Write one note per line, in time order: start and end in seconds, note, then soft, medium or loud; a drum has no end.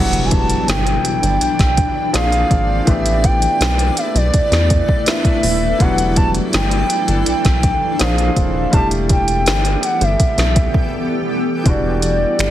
0.00 0.54 E1 loud
0.00 2.09 E3 medium
0.00 2.12 E3 medium
0.00 2.12 F#3 medium
0.00 2.10 G3 medium
0.00 2.11 B3 medium
0.00 2.12 D4 medium
0.00 2.12 E4 medium
0.00 11.62 D5 medium
0.00 0.27 F#5 loud
0.00 2.12 G5 medium
0.00 impact medium
0.13 closed hi-hat medium
0.25 0.33 G#5 medium
0.31 0.69 A5 loud
0.31 kick loud
0.31 closed hi-hat medium
0.50 closed hi-hat medium
0.68 0.98 G1 loud
0.68 1.40 G5 loud
0.68 snare loud
0.68 closed hi-hat medium
0.87 closed hi-hat medium
1.05 closed hi-hat medium
1.23 1.38 G1 medium
1.23 closed hi-hat soft
1.41 1.48 B1 soft
1.41 2.10 G5 loud
1.41 closed hi-hat medium
1.59 1.89 B1 medium
1.59 kick loud
1.59 snare medium
1.59 closed hi-hat soft
1.77 kick loud
1.77 closed hi-hat medium
2.13 2.44 A#1 loud
2.13 2.87 F3 medium
2.13 2.87 A#3 medium
2.13 2.88 C4 medium
2.13 2.88 D4 medium
2.13 2.88 G#4 medium
2.13 2.89 F5 loud
2.13 snare loud
2.13 closed hi-hat medium
2.32 closed hi-hat medium
2.51 2.81 G#1 loud
2.51 kick medium
2.51 closed hi-hat medium
2.85 3.47 A1 loud
2.85 5.02 E3 medium
2.85 5.03 A3 medium
2.85 5.78 A3 medium
2.85 5.03 B3 medium
2.85 7.96 E4 medium
2.85 7.96 A4 medium
2.85 5.77 B4 medium
2.85 3.26 E5 loud
2.85 kick loud
2.85 closed hi-hat medium
2.89 5.04 D4 medium
2.89 5.05 G4 medium
3.06 closed hi-hat medium
3.24 3.99 G5 loud
3.24 kick loud
3.24 closed hi-hat medium
3.42 closed hi-hat medium
3.60 3.90 B1 medium
3.60 snare loud
3.60 closed hi-hat medium
3.79 closed hi-hat medium
3.97 4.18 E5 loud
3.97 closed hi-hat medium
4.15 4.30 B1 loud
4.15 5.09 D5 medium
4.15 closed hi-hat soft
4.34 4.41 E2 soft
4.34 kick medium
4.34 closed hi-hat medium
4.51 4.81 E2 medium
4.51 snare medium
4.51 closed hi-hat soft
4.70 kick loud
4.70 closed hi-hat medium
4.89 kick loud
5.06 5.77 E3 medium
5.06 5.80 A3 soft
5.06 5.79 B3 medium
5.06 5.81 D4 medium
5.06 5.81 E4 medium
5.06 5.82 E5 loud
5.06 snare loud
5.06 closed hi-hat medium
5.25 kick loud
5.25 closed hi-hat medium
5.43 5.73 D#1 medium
5.43 open hi-hat medium
5.78 6.40 E1 loud
5.78 7.95 E3 medium
5.78 7.98 E3 medium
5.78 7.95 G3 medium
5.78 7.96 B3 medium
5.78 7.98 D4 medium
5.78 6.17 F#5 loud
5.78 kick loud
5.78 closed hi-hat medium
5.82 7.98 F#3 medium
5.82 7.97 D4 medium
5.98 closed hi-hat medium
6.16 6.31 A5 loud
6.16 kick loud
6.16 closed hi-hat medium
6.35 closed hi-hat medium
6.53 6.83 G1 medium
6.53 7.23 G5 loud
6.53 snare loud
6.53 closed hi-hat medium
6.71 closed hi-hat medium
6.90 closed hi-hat medium
7.08 7.23 G1 medium
7.08 closed hi-hat medium
7.26 7.34 B1 soft
7.26 8.03 G5 loud
7.26 closed hi-hat medium
7.45 7.75 B1 medium
7.45 kick medium
7.45 snare medium
7.45 closed hi-hat soft
7.63 kick loud
7.63 closed hi-hat medium
7.99 8.30 A#1 loud
7.99 8.73 F3 medium
7.99 8.73 A#3 medium
7.99 8.73 C4 medium
7.99 8.72 D4 medium
7.99 8.74 G#4 medium
7.99 8.74 F5 medium
7.99 snare loud
7.99 closed hi-hat medium
8.18 closed hi-hat medium
8.36 8.66 D#1 loud
8.36 kick loud
8.36 closed hi-hat medium
8.71 9.48 E1 loud
8.71 11.63 E3 medium
8.71 11.61 G3 medium
8.71 11.61 A3 medium
8.71 11.62 B3 medium
8.71 11.62 D4 medium
8.71 11.62 G4 medium
8.71 11.63 A4 medium
8.71 11.63 G5 loud
8.71 8.88 A5 loud
8.71 kick loud
8.71 closed hi-hat medium
8.75 11.63 E4 medium
8.75 11.64 G4 medium
8.91 closed hi-hat medium
9.09 9.86 G5 loud
9.09 kick loud
9.09 closed hi-hat medium
9.28 closed hi-hat medium
9.46 9.76 G1 loud
9.46 snare loud
9.46 closed hi-hat medium
9.65 closed hi-hat medium
9.83 10.05 F#5 medium
9.83 closed hi-hat medium
10.01 10.16 G1 medium
10.01 11.30 E5 medium
10.01 closed hi-hat medium
10.20 10.27 B1 soft
10.20 kick medium
10.20 closed hi-hat medium
10.38 10.67 B1 medium
10.38 snare medium
10.38 closed hi-hat soft
10.56 kick loud
10.56 closed hi-hat medium
10.74 kick loud
11.64 12.25 E1 loud
11.64 12.51 E3 medium
11.64 12.51 G3 medium
11.64 12.51 D4 medium
11.64 12.51 E4 medium
11.64 12.51 D5 loud
11.64 12.51 F#5 medium
11.64 kick medium
11.64 closed hi-hat medium
11.69 12.51 F#4 medium
12.02 closed hi-hat medium
12.39 12.51 G1 loud
12.39 finger snap loud
12.39 closed hi-hat medium